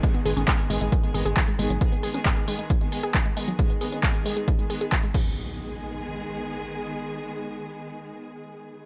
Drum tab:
CC |----------------|----------------|--------------x-|----------------|
HH |xxoxxxoxxxoxxxox|xxoxxxoxxxoxxxox|xxoxxxoxxxoxxx--|----------------|
CP |----x-------x---|----x-------x---|----x-------x---|----------------|
BD |o---o---o---o---|o---o---o---o---|o---o---o---o-o-|----------------|

CC |----------------|
HH |----------------|
CP |----------------|
BD |----------------|